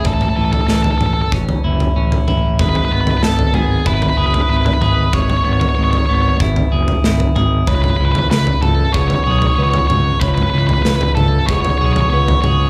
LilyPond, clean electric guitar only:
\new Staff \with { instrumentName = "Clean electric guitar" } { \time 4/4 \key e \mixolydian \tempo 4 = 94 <a, cis' e'>8 e8 e4 cis'8 e'8 cis'8 e'8 | gis8 b4 b8 e'8 gis'8 e'8 gis'8 | gis8 b8 gis8 b8 e'8 gis'8 e'8 gis'8 | cis8 e8 e4 b8 gis'8 b4 |
cis8 e8 e4 b8 gis'8 b8 gis'8 | }